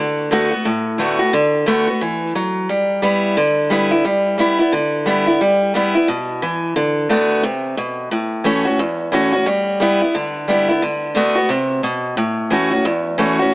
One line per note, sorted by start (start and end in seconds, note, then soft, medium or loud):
0.00 0.30 D3 medium
0.31 0.51 D3 medium
0.31 0.52 A3 medium
0.31 0.52 B3 medium
0.31 0.50 F#4 loud
0.51 0.65 B3 medium
0.51 0.64 F#4 medium
0.65 1.31 A2 medium
0.98 1.19 D3 medium
0.98 1.19 A3 medium
0.98 1.19 B3 loud
0.98 1.18 F#4 loud
1.19 1.34 B3 medium
1.19 1.32 F#4 medium
1.33 1.65 D3 loud
1.66 1.87 D3 medium
1.66 1.87 A3 loud
1.66 1.87 B3 medium
1.66 1.86 F#4 medium
1.87 2.02 B3 soft
1.87 2.00 F#4 medium
2.01 2.34 E3 medium
2.35 2.68 F#3 medium
2.69 3.01 G3 medium
3.02 3.35 G3 medium
3.02 3.36 B3 loud
3.02 3.36 E4 medium
3.37 4.02 D3 medium
3.70 3.90 G3 medium
3.70 3.91 B3 loud
3.70 3.90 E4 loud
3.91 4.05 B3 medium
3.91 4.04 E4 medium
4.05 4.37 G3 medium
4.38 4.58 G3 medium
4.38 4.59 B3 medium
4.38 4.58 E4 loud
4.59 4.73 B3 medium
4.59 4.72 E4 medium
4.72 5.38 D3 medium
5.06 5.26 G3 medium
5.06 5.26 B3 medium
5.06 5.26 E4 loud
5.27 5.41 B3 medium
5.27 5.40 E4 medium
5.41 5.73 G3 loud
5.74 5.94 G3 medium
5.74 5.95 B3 medium
5.74 5.94 E4 loud
5.95 6.09 B3 soft
5.95 6.08 E4 medium
6.08 6.41 B2 medium
6.42 6.75 E3 medium
6.76 7.08 D3 medium
7.09 7.42 D3 medium
7.09 7.43 A3 medium
7.09 7.43 B3 loud
7.09 7.43 F#4 medium
7.43 7.76 C3 loud
7.77 8.10 B2 medium
8.11 8.77 A2 medium
8.44 8.65 E3 medium
8.44 8.65 A3 medium
8.44 8.66 C#4 medium
8.44 8.64 F#4 medium
8.65 8.79 C#4 medium
8.65 8.78 F#4 medium
8.79 9.44 E2 loud
9.12 9.32 E3 medium
9.12 9.33 A3 medium
9.12 9.33 C#4 loud
9.12 9.31 F#4 loud
9.33 9.47 C#4 medium
9.33 9.46 F#4 medium
9.46 9.79 G3 loud
9.80 10.00 G3 medium
9.80 10.01 B3 medium
9.80 10.00 E4 loud
10.01 10.15 B3 soft
10.01 10.14 E4 medium
10.15 10.80 D3 medium
10.48 10.68 G3 loud
10.48 10.69 B3 medium
10.48 10.68 E4 medium
10.69 10.83 B3 medium
10.69 10.82 E4 medium
10.82 11.14 D3 medium
11.15 11.35 D3 medium
11.15 11.36 A3 medium
11.15 11.36 B3 loud
11.15 11.34 F#4 medium
11.35 11.50 B3 soft
11.35 11.49 F#4 medium
11.49 11.82 C3 medium
11.83 12.16 B2 medium
12.17 12.82 A2 loud
12.50 12.71 E3 medium
12.50 12.71 A3 medium
12.50 12.72 C#4 medium
12.50 12.70 F#4 loud
12.71 12.85 C#4 medium
12.71 12.84 F#4 medium
12.85 13.50 E2 loud
13.18 13.38 E3 medium
13.18 13.39 A3 medium
13.18 13.39 C#4 loud
13.18 13.38 F#4 loud
13.39 13.53 C#4 medium
13.39 13.52 F#4 medium